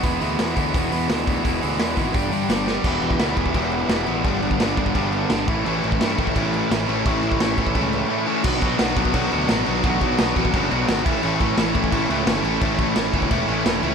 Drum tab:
CC |----------------|----------------|x-x-x-x-x-x-x-x-|x-x-x-x-x-x-x-x-|
HH |o-o-o-o-o-o-o-o-|o-o-o-o-o-o-o---|----------------|----------------|
SD |----o-------o---|----o-------o-o-|----o-------o---|----o-------o---|
BD |o-----o-o-----o-|o-----o-o-------|o--o--ooo-------|o--o--ooo-----o-|

CC |x-x-x-x-x-x-x-x-|x-x-x-x-x-x-----|x-x-x-x-x-x-x-x-|x-x-x-x-x-x-x-x-|
HH |----------------|----------------|----------------|----------------|
SD |----o-------o---|----o-----------|----o-------o---|----o-------o---|
BD |---o--ooo-------|o--o--ooo-------|o-o---ooo-------|o-o---ooo-----o-|

CC |x-x-x-x-x-x-x-x-|x-x-x-x-x-x-x-x-|
HH |----------------|----------------|
SD |----o-------o---|----o-------o---|
BD |--o---ooo-------|o-o---ooo-------|